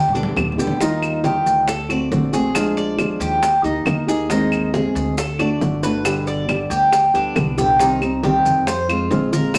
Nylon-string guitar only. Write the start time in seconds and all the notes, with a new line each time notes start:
0.14 D3 G3 B3 G4
0.36 D3 G3 B3 G4
0.58 D3 G3 B3 G4
0.80 D#3 G3 D#4 F4
1.23 D#3 G3 D#4 F4
1.68 muted nylon-string guitar stroke
1.89 A3 C4 F#4
2.11 D3 A3 C4 F#4
2.32 A3 C4 F#4
2.55 F3 G#3 D4 F4
2.98 F3 G#3 D4 F4
3.42 muted nylon-string guitar stroke
3.63 A#3 D#4 G4
3.85 D#3 A#3 D#4 G4
4.07 A#3 D#4 G4
4.29 D#3 G#3 C4
4.73 D#3 G#3 C4
5.17 muted nylon-string guitar stroke
5.39 A3 D4 F#4
5.61 D3 A3 D4 F#4
5.83 A3 D4 F#4
6.04 B2 D3 G3 B3 G4
6.47 D3 G3 B3 G4
6.92 muted nylon-string guitar stroke
7.14 D3 G3 B3 G4
7.36 D3 G3 B3 G4
7.58 D3 G3 B3 G4
7.79 C3 D#3 G3 C4 G4
8.01 G3 C4 G4
8.23 C3 D#3 G3 C4 G4
8.67 muted nylon-string guitar stroke
8.88 G#3 C4 F4
9.11 C3 F3 G#3 C4 F4
9.32 G#3 C4 F4
9.54 D3 A#3 C4